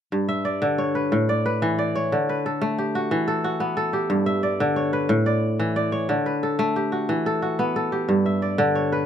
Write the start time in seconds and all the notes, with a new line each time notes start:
0.12 G2
0.29 E5
0.45 D5
0.62 D3
0.78 C#5
0.95 B4
1.12 A2
1.29 D5
1.46 B4
1.62 E3
1.79 D5
1.96 C#5
2.12 D3
2.29 B4
2.46 A4
2.62 A3
2.78 G4
2.95 F#4
3.11 E3
3.28 A4
3.44 F#4
3.60 B3
3.77 A4
3.93 G4
4.10 G2
4.26 E5
4.43 D5
4.60 D3
4.76 C#5
4.93 B4
5.09 A2
5.26 D5
5.60 E3
5.76 D5
5.92 C#5
6.09 D3
6.26 B4
6.43 A4
6.59 A3
6.76 G4
6.92 F#4
7.09 E3
7.26 A4
7.42 F#4
7.59 B3
7.76 A4
7.92 G4
8.09 G2
8.26 E5
8.42 D5
8.58 D3
8.75 C#5
8.92 B4